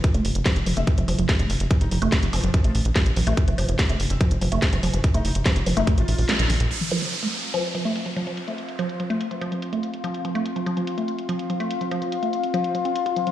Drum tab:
CC |----------------|----------------|----------------|----------------|
HH |xxoxxxoxxxoxxxox|xxoxxxoxxxoxxxox|xxoxxxoxxxoxxxox|xxoxxxoxxxooxxox|
SD |----o-------o---|----o-------o---|----o-------o---|----o-------o---|
BD |o---o---o---o---|o---o---o---o---|o---o---o---o---|o---o---o-------|

CC |x---------------|----------------|----------------|----------------|
HH |xxxxxxxxxxxxxxxx|xxxxxxxxxxxxxxxx|xxxxxxxxxxxxxxxx|xxxxxxxxxxxxxxxx|
SD |----------------|----------------|----------------|----------------|
BD |----------------|----------------|----------------|----------------|